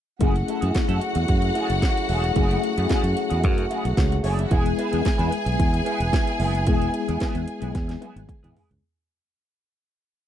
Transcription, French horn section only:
0.21 4.47 C#3 medium
0.21 4.47 F#3 medium
0.21 4.47 A3 medium
0.21 2.34 E4 medium
0.21 8.78 G#4 medium
2.37 4.49 F#4 medium
4.52 8.78 B3 medium
4.52 8.78 E4 medium

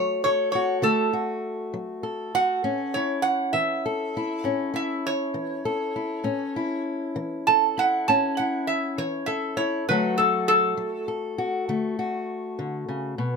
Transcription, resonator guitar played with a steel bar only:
0.00 0.22 C#5 medium
0.24 0.51 C#5 medium
0.52 0.82 C#5 medium
0.83 1.12 A4 medium
2.35 2.93 F#5 medium
2.94 3.24 C#5 medium
3.22 3.52 F#5 medium
3.53 4.43 E5 medium
4.43 4.73 F#5 medium
4.76 5.05 E5 medium
5.07 6.83 C#5 medium
7.47 7.76 A5 medium
7.79 8.07 F#5 medium
8.08 8.37 A5 medium
8.37 8.67 F#5 medium
8.67 8.97 E5 medium
8.98 9.27 C#5 medium
9.26 9.56 E5 medium
9.57 9.87 C#5 medium
9.89 10.18 B4 medium
10.18 10.47 A4 medium
10.48 11.07 A4 loud

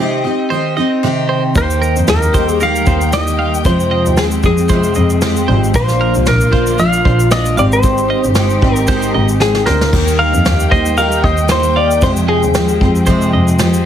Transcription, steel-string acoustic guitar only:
0.00 0.25 C3 medium
0.00 0.25 D#3 medium
0.00 0.25 C4 medium
0.00 0.24 D#4 medium
0.00 0.23 G4 medium
0.24 0.50 C4 soft
0.24 0.51 D#4 medium
0.24 0.50 G4 medium
0.50 0.77 D#3 medium
0.50 0.77 C4 medium
0.50 0.76 D#4 medium
0.50 0.75 G4 medium
0.77 1.03 C4 medium
0.77 1.03 D#4 medium
0.77 1.03 G4 medium
1.03 1.55 C3 medium
1.03 1.55 D#3 medium
1.03 1.55 C4 medium
1.03 1.56 D#4 medium
1.03 1.56 G4 loud
1.55 2.06 D#3 medium
1.55 2.07 A#3 medium
1.55 2.07 D#4 medium
1.55 2.09 G4 medium
2.07 2.34 D#3 medium
2.07 2.34 A#3 medium
2.07 2.34 D#4 medium
2.07 2.33 G4 medium
2.34 2.59 A#3 soft
2.34 2.60 D#4 soft
2.34 2.60 G4 medium
2.60 3.11 D#3 medium
2.60 3.12 A#3 medium
2.60 3.12 D#4 medium
2.60 3.14 G4 medium
3.12 3.65 D#3 medium
3.12 3.65 A#3 medium
3.12 3.65 D#4 medium
3.12 3.66 G4 medium
3.65 4.17 F2 medium
3.65 4.18 C3 medium
3.65 4.17 F3 medium
3.65 4.17 G#3 medium
3.65 4.18 C4 medium
3.65 4.18 G4 loud
4.17 4.43 F3 medium
4.17 4.43 G#3 medium
4.17 4.43 C4 medium
4.17 4.42 G4 medium
4.43 4.69 F3 soft
4.43 4.70 G#3 soft
4.43 4.69 C4 medium
4.43 4.70 G4 medium
4.70 5.22 F2 medium
4.70 5.22 C3 medium
4.70 5.21 F3 medium
4.70 5.21 G#3 medium
4.70 5.22 C4 medium
5.22 5.48 F3 medium
5.22 5.48 G#3 medium
5.22 5.48 C4 medium
5.22 5.47 G4 medium
5.48 5.73 F3 soft
5.48 5.74 G#3 medium
5.48 5.75 C4 medium
5.48 5.74 G4 medium
5.74 6.26 A#2 medium
5.74 6.24 F3 medium
5.74 6.25 A#3 medium
5.74 6.26 D4 medium
5.74 6.26 F4 loud
6.26 6.52 F3 medium
6.26 6.53 A#3 medium
6.26 6.52 D4 medium
6.26 6.50 F4 medium
6.52 6.77 A#3 soft
6.52 6.78 D4 soft
6.52 6.78 F4 medium
6.78 7.31 A#2 medium
6.78 7.30 F3 medium
6.78 7.30 A#3 medium
6.78 7.31 D4 medium
6.78 7.31 F4 medium
7.31 7.57 F3 medium
7.31 7.57 A#3 medium
7.31 7.57 D4 medium
7.31 7.57 F4 medium
7.57 8.34 G#3 medium
7.57 8.34 C4 medium
7.57 8.36 D#4 medium
7.57 8.36 G4 medium
8.35 8.62 G#3 medium
8.35 8.62 C4 medium
8.35 8.62 D#4 medium
8.35 8.60 G4 medium
8.61 8.87 C4 soft
8.61 8.87 D#4 soft
8.61 8.88 G4 medium
8.88 9.39 G#3 medium
8.88 9.39 C4 medium
8.88 9.41 D#4 medium
8.88 9.42 G4 loud
9.40 9.67 G#3 medium
9.40 9.67 C4 medium
9.40 9.66 D#4 medium
9.40 9.64 G4 medium
9.66 9.93 C4 soft
9.66 9.92 D#4 soft
9.66 9.92 G4 soft
9.93 10.43 D#3 medium
9.93 10.45 A#3 medium
9.93 10.45 D#4 medium
9.93 10.47 G4 medium
10.45 10.71 D#3 medium
10.45 10.72 A#3 medium
10.45 10.71 D#4 medium
10.45 10.70 G4 medium
10.71 10.97 A#3 soft
10.71 10.97 D#4 medium
10.71 10.97 G4 medium
10.97 11.48 D#3 medium
10.97 11.49 A#3 medium
10.97 11.50 D#4 medium
10.97 11.51 G4 medium
11.49 12.02 D#3 medium
11.49 12.02 A#3 medium
11.49 12.03 D#4 medium
11.49 12.03 G4 medium
12.02 12.54 F2 medium
12.02 12.55 C3 medium
12.02 12.54 F3 medium
12.02 12.54 G#3 medium
12.02 12.55 C4 medium
12.02 12.55 G4 medium
12.55 12.81 F3 medium
12.55 12.81 G#3 medium
12.55 12.80 C4 medium
12.55 12.80 G4 medium
12.81 13.06 F3 soft
12.81 13.07 G#3 soft
12.81 13.07 C4 soft
12.81 13.07 G4 medium
13.07 13.59 F2 medium
13.07 13.60 C3 medium
13.07 13.58 F3 medium
13.07 13.58 G#3 medium
13.07 13.59 C4 medium
13.59 13.86 F3 medium
13.59 13.86 G#3 medium
13.59 13.86 C4 medium
13.59 13.86 G4 medium

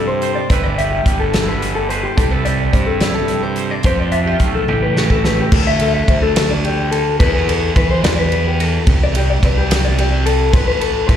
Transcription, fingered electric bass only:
0.00 0.38 G2 medium
0.50 1.00 G1 medium
1.06 2.06 G1 medium
2.18 2.68 C2 medium
2.73 3.73 G2 medium
3.84 4.35 F2 medium
4.40 4.66 B1 medium
4.68 5.43 A1 loud
5.52 6.02 D2 loud
6.08 7.20 D2 medium
7.20 7.70 E2 loud
7.76 8.01 E3 loud
8.03 8.78 E2 loud
8.87 9.37 C2 loud
9.43 10.54 C2 medium
10.54 11.03 A1 loud
11.09 11.17 A2 medium

